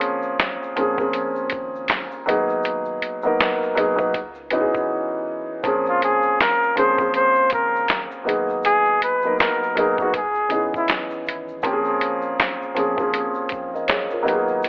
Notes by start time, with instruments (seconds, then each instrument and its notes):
Already playing: felt piano F3 A#3 C4 C#4 G#4
0.01 closed hi-hat, shaker
0.22 shaker
0.39 snare, clap, closed hi-hat, shaker
0.63 shaker
0.76 felt piano F3 A#3 C4 C#4 G#4, closed hi-hat, shaker
0.98 sub bass F#1, felt piano F3 A#3 C4 C#4 G#4, kick, shaker
1.13 closed hi-hat, shaker
1.35 shaker
1.50 sub bass G#1, kick, closed hi-hat, shaker
1.76 shaker
1.88 snare, clap, closed hi-hat, shaker
2.11 shaker
2.26 sub bass G#1, felt piano F#3 A#3 B3 D#4 G#4, closed hi-hat, shaker
2.49 shaker
2.63 closed hi-hat, shaker
2.85 shaker
3.02 closed hi-hat, shaker
3.22 felt piano F#3 A#3 B3 D#4, shaker
3.27 felt piano A#4
3.40 snare, clap, closed hi-hat, shaker
3.63 shaker
3.75 felt piano F#3 A#3 B3 D#4 G#4, closed hi-hat, shaker
3.96 sub bass B1, felt piano F#3 A#3 B3 D#4 B4, kick, shaker
4.13 sub bass C#2, kick, closed hi-hat, shaker
4.34 shaker
4.50 felt piano E3 B3 C#4 D#4 F#4, closed hi-hat, shaker
4.61 felt piano G#4
4.75 sub bass B1, kick, shaker
5.63 sub bass A#1, felt piano F3 A#3 C4 C#4 G#4, kick, closed hi-hat, shaker
5.86 flugelhorn F4, shaker
6.02 flugelhorn G#4, closed hi-hat, shaker
6.22 shaker
6.40 flugelhorn A#4, snare, clap, closed hi-hat, shaker
6.63 shaker
6.76 felt piano F3 A#3 C4 C#4 G#4, flugelhorn C5, closed hi-hat, shaker
6.98 sub bass F#1, felt piano F3 A#3 C4 C#4 G#4, kick, shaker
7.14 flugelhorn C5, closed hi-hat, shaker
7.35 shaker
7.50 sub bass G#1, flugelhorn A#4, kick, closed hi-hat, shaker
7.76 shaker
7.88 snare, clap, closed hi-hat, shaker
8.11 shaker
8.24 sub bass G#1, felt piano F#3 A#3 B3 D#4 G#4, shaker
8.29 closed hi-hat
8.49 shaker
8.63 flugelhorn G#4, closed hi-hat, shaker
8.85 shaker
9.02 flugelhorn B4, closed hi-hat, shaker
9.22 felt piano F#3 A#3 B3, shaker
9.26 felt piano D#4 A#4
9.39 flugelhorn A#4, snare, clap, closed hi-hat, shaker
9.63 shaker
9.75 felt piano F#3 A#3 B3 D#4 G#4, closed hi-hat, shaker
9.98 sub bass B1, felt piano F#3 A#3 B3 D#4, flugelhorn F#4, kick, shaker
10.02 felt piano G#4
10.13 sub bass C#2, flugelhorn G#4, kick, closed hi-hat, shaker
10.35 shaker
10.49 felt piano E3 B3 C#4 D#4 G#4, closed hi-hat, shaker
10.74 sub bass B1, flugelhorn E4, kick, shaker
10.88 snare, clap, closed hi-hat, shaker
11.10 shaker
11.26 sub bass G#1, closed hi-hat, shaker
11.48 shaker
11.62 sub bass A#1, felt piano F3 A#3 C4 C#4, kick, closed hi-hat, shaker
11.67 felt piano G4
11.73 felt piano G#4
11.85 shaker
12.01 closed hi-hat, shaker
12.22 shaker
12.39 snare, clap, closed hi-hat, shaker
12.62 shaker
12.75 felt piano F3 A#3 C4 C#4 G#4, closed hi-hat, shaker
12.97 sub bass G#1, felt piano F3 A#3 C4 C#4 G#4, kick, shaker
13.13 closed hi-hat, shaker
13.34 shaker
13.49 sub bass A#1, kick, closed hi-hat, shaker
13.74 felt piano A#4 D#5, shaker
13.88 felt piano G#4 C#5, snare, clap, closed hi-hat, shaker
14.10 felt piano F4 A#4, shaker
14.22 felt piano F#3 A#3 B3 D#4 G4, shaker
14.27 sub bass G#1, closed hi-hat
14.32 felt piano G#4
14.48 shaker
14.62 closed hi-hat, shaker